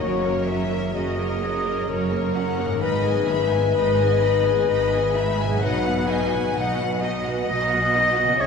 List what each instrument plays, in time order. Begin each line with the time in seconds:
Already playing: harp F#2 A#3 F#4 C#5
0.00 double bass section F#1, cello section F#2, viola section C#4 F#4, clarinet F#4, violin section A#4 C#5
0.24 viola section A#3 A#4, violin section C#5
0.46 viola section C#4 F#4, violin section A#4 E5
0.72 viola section A#3 A#4, violin section C#5
0.95 double bass section F#1, cello section F#2, viola section C#4 F#4, clarinet G#4, violin section A#4 D#5
1.18 viola section A#3 A#4, violin section C#5
1.41 viola section C#4 F#4, violin section A#4
1.65 viola section A#3 A#4, violin section C#5
1.88 double bass section F#1, cello section F#2, viola section C#4 F#4, violin section A#4 C#5, clarinet A#4
2.11 viola section A#3 A#4, violin section C#5
2.35 viola section C#4 F#4, violin section A#4 F#5
2.58 viola section A#3 A#4, violin section C#5
2.65 harp G#2
2.70 harp G#3
2.74 harp D#3
2.79 cello section G#2, viola section G#3, harp B4, clarinet B4, violin section D#5 B5
2.83 double bass section G#1, viola section D#4
3.05 viola section B3 G#4, violin section G#5
3.29 viola section G#3 D#4, violin section E5 B5
3.52 viola section B3 G#4, violin section G#5
3.75 double bass section G#1, cello section G#2, viola section G#3 D#4, violin section D#5 B5
3.99 viola section B3 G#4, violin section G#5
4.23 viola section G#3 D#4, violin section B5
4.46 viola section B3 G#4, violin section G#5
4.67 double bass section G#1, cello section G#2, viola section G#3 D#4, violin section D#5 B5
4.93 viola section B3 G#4, violin section G#5
5.16 viola section G#3 D#4, violin section E5 B5
5.40 viola section B3 G#4, violin section G#5
5.45 harp B2
5.49 harp F#3
5.54 harp D#4
5.58 cello section B2, harp D#5, violin section F#5
5.63 double bass section B1, viola section F#3 D#4, clarinet B4, violin section D#5
5.86 viola section B3 F#4, violin section F#5
6.08 viola section F#3 D#4, violin section D#5 G#5
6.33 viola section B3 F#4, violin section F#5
6.54 double bass section B1, cello section B2, viola section F#3 D#4, violin section D#5 F#5
6.79 viola section B3 F#4, violin section F#5
7.00 viola section F#3 D#4, violin section D#5
7.26 viola section B3 F#4, violin section F#5
7.49 double bass section B1, cello section B2, viola section F#3 D#4, clarinet D#5, violin section D#5
7.71 viola section B3 F#4, violin section F#5
7.96 viola section F#3 D#4, violin section D#5
8.16 viola section B3 F#4, violin section F#5
8.23 harp C#3
8.27 harp C#4
8.32 harp E4
8.36 double bass section C#2, cello section C#3, harp C#5, violin section C#5 E5
8.41 viola section C#4 G#4, clarinet C#5